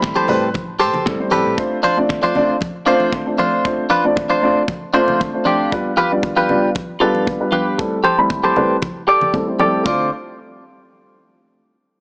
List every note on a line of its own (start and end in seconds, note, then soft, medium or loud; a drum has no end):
0.00 0.12 A1 medium
0.00 0.26 G3 medium
0.00 0.26 A3 medium
0.00 0.26 C4 medium
0.00 0.26 E4 medium
0.00 0.26 B5 medium
0.00 muted clean electric guitar stroke soft
0.00 kick loud
0.00 snare loud
0.15 0.48 G4 medium
0.15 0.48 A4 medium
0.15 0.48 C5 medium
0.15 high conga medium
0.28 0.57 A2 medium
0.28 0.46 G3 medium
0.28 0.46 A3 medium
0.28 0.46 C4 medium
0.28 0.46 E4 medium
0.28 0.46 B4 medium
0.28 open hi-hat medium
0.28 low conga medium
0.54 0.82 A1 medium
0.54 kick loud
0.54 high conga medium
0.54 low conga medium
0.80 0.89 A2 medium
0.80 1.06 G4 loud
0.80 1.06 A4 loud
0.80 1.06 C5 loud
0.80 open hi-hat loud
0.94 high conga medium
0.94 low conga medium
1.05 1.15 A1 medium
1.05 1.16 G3 medium
1.05 1.16 A3 medium
1.05 1.17 C4 medium
1.05 1.17 E4 medium
1.05 1.17 A4 loud
1.05 kick loud
1.05 snare loud
1.19 1.30 G3 medium
1.19 1.30 A3 medium
1.19 1.30 C4 medium
1.19 1.30 E4 medium
1.19 1.30 C5 medium
1.31 1.41 A2 medium
1.31 1.55 G3 medium
1.31 1.55 A3 medium
1.31 1.55 C4 medium
1.31 1.55 E4 medium
1.31 1.58 G4 medium
1.31 1.58 A4 medium
1.31 1.55 A4 medium
1.31 1.58 B4 medium
1.31 open hi-hat medium
1.31 high conga loud
1.46 1.53 A2 loud
1.57 1.75 A3 medium
1.57 1.75 C4 medium
1.57 1.76 D4 medium
1.57 1.76 F4 medium
1.57 1.76 C5 loud
1.57 kick loud
1.83 1.97 D4 loud
1.83 1.97 F4 medium
1.83 1.98 C5 loud
1.83 open hi-hat loud
1.83 high conga medium
1.97 2.32 A3 medium
1.97 2.33 C4 medium
1.97 2.33 D4 medium
1.97 2.33 F4 medium
1.97 2.33 D5 medium
2.09 muted clean electric guitar stroke soft
2.09 kick loud
2.09 snare loud
2.23 2.55 D4 medium
2.23 2.55 F4 medium
2.23 2.56 C5 medium
2.23 high conga medium
2.35 2.53 A3 medium
2.35 2.53 C4 medium
2.35 2.53 D4 medium
2.35 2.53 F4 medium
2.35 2.54 D5 loud
2.35 open hi-hat medium
2.35 low conga medium
2.61 kick loud
2.61 high conga medium
2.86 3.23 A3 medium
2.86 3.23 C4 medium
2.86 3.13 D4 loud
2.86 3.24 D4 medium
2.86 3.13 F4 loud
2.86 3.24 F4 medium
2.86 3.13 C5 loud
2.86 3.24 C5 loud
2.86 open hi-hat loud
3.00 high conga medium
3.12 kick medium
3.12 snare loud
3.26 3.62 A3 medium
3.26 3.62 C4 medium
3.26 3.62 D4 medium
3.26 3.62 F4 medium
3.26 3.62 C5 medium
3.38 3.65 D4 medium
3.38 3.65 F4 medium
3.38 3.65 C5 medium
3.38 open hi-hat medium
3.38 high conga medium
3.64 3.82 A3 medium
3.64 3.82 C4 medium
3.64 3.82 D4 medium
3.64 3.83 F4 medium
3.64 3.83 C5 loud
3.64 kick loud
3.90 4.04 D4 loud
3.90 4.04 F4 loud
3.90 4.04 B4 loud
3.90 open hi-hat loud
3.90 high conga medium
4.04 4.39 A3 medium
4.04 4.40 C4 medium
4.04 4.40 D4 medium
4.04 4.40 F4 medium
4.04 4.40 D5 medium
4.16 muted clean electric guitar stroke soft
4.16 kick loud
4.16 snare loud
4.29 4.62 D4 medium
4.29 4.62 F4 medium
4.29 4.62 C5 medium
4.29 high conga medium
4.42 4.60 A3 medium
4.42 4.60 C4 medium
4.42 4.60 D4 medium
4.42 4.60 F4 medium
4.42 4.60 D5 loud
4.42 open hi-hat medium
4.68 kick loud
4.68 high conga medium
4.68 low conga medium
4.94 5.30 A3 loud
4.94 5.31 C4 medium
4.94 5.20 D4 loud
4.94 5.31 D4 medium
4.94 5.20 F4 loud
4.94 5.31 F4 medium
4.94 5.20 C5 loud
4.94 5.31 C5 loud
5.08 high conga medium
5.08 low conga medium
5.20 kick medium
5.20 snare loud
5.33 5.69 A3 medium
5.33 5.69 C4 medium
5.33 5.69 D4 medium
5.33 5.69 F4 medium
5.33 5.69 C5 medium
5.45 5.71 D4 medium
5.45 5.72 F4 medium
5.45 5.72 G4 medium
5.45 high conga medium
5.71 5.89 G3 medium
5.71 5.89 B3 medium
5.71 5.90 D4 medium
5.71 5.90 F4 medium
5.71 5.90 B4 loud
5.71 kick loud
5.97 6.11 F4 loud
5.97 6.11 G4 loud
5.97 6.12 B4 loud
5.97 high conga medium
6.11 6.46 G3 medium
6.11 6.47 B3 medium
6.11 6.47 D4 medium
6.11 6.47 F4 medium
6.11 6.47 D5 medium
6.23 muted clean electric guitar stroke soft
6.23 kick medium
6.23 snare loud
6.36 6.69 F4 medium
6.36 6.69 G4 medium
6.36 6.69 B4 medium
6.36 high conga medium
6.49 6.67 G3 medium
6.49 6.67 B3 medium
6.49 6.67 D4 medium
6.49 6.67 F4 medium
6.49 6.67 D5 medium
6.49 low conga medium
6.75 kick loud
6.75 high conga medium
7.00 7.37 G3 medium
7.00 7.37 B3 medium
7.00 7.37 D4 medium
7.00 7.27 F4 loud
7.00 7.38 F4 medium
7.00 7.27 G4 medium
7.00 7.27 A4 loud
7.00 7.38 B4 loud
7.00 open hi-hat loud
7.15 high conga medium
7.27 kick medium
7.27 snare loud
7.40 7.75 G3 medium
7.40 7.76 B3 medium
7.40 7.76 D4 medium
7.40 7.76 F4 medium
7.40 7.76 B4 medium
7.52 7.78 F4 medium
7.52 7.79 G4 medium
7.52 7.79 B4 loud
7.52 high conga medium
7.78 7.96 G3 medium
7.78 7.96 A3 medium
7.78 7.96 C4 medium
7.78 7.96 E4 medium
7.78 7.97 A4 loud
7.78 kick loud
8.04 8.18 G4 loud
8.04 8.18 A4 medium
8.04 8.18 C5 loud
8.04 high conga medium
8.18 8.53 G3 medium
8.18 8.53 A3 medium
8.18 8.53 C4 medium
8.18 8.54 E4 medium
8.18 8.54 B5 medium
8.30 muted clean electric guitar stroke soft
8.30 kick loud
8.30 snare loud
8.44 8.76 G4 medium
8.44 8.76 A4 medium
8.44 8.76 C5 medium
8.44 high conga medium
8.56 8.74 G3 medium
8.56 8.74 A3 medium
8.56 8.74 C4 medium
8.56 8.74 E4 medium
8.56 8.74 B4 loud
8.56 snare medium
8.56 low conga medium
8.82 kick loud
8.82 high conga medium
8.82 low conga medium
9.08 9.34 G4 loud
9.08 9.34 A4 medium
9.08 9.34 D5 loud
9.21 high conga medium
9.21 low conga medium
9.33 9.44 G3 loud
9.33 9.44 A3 medium
9.33 9.44 C4 medium
9.33 9.44 E4 medium
9.33 9.45 A4 loud
9.33 kick medium
9.33 snare loud
9.47 9.57 G3 medium
9.47 9.57 A3 medium
9.47 9.58 C4 medium
9.47 9.58 E4 medium
9.47 9.58 C5 medium
9.59 9.83 G3 medium
9.59 9.83 A3 medium
9.59 9.83 C4 medium
9.59 9.83 E4 medium
9.59 9.85 G4 medium
9.59 9.86 A4 medium
9.59 9.83 A4 medium
9.59 9.85 D5 loud
9.59 high conga medium
9.84 10.10 D2 loud
9.84 10.04 A3 medium
9.84 10.05 C4 medium
9.84 10.05 D4 medium
9.84 10.10 F4 medium
9.84 10.06 F4 medium
9.84 10.10 C5 medium
9.84 10.06 C5 medium
9.84 10.10 D5 medium
9.84 kick loud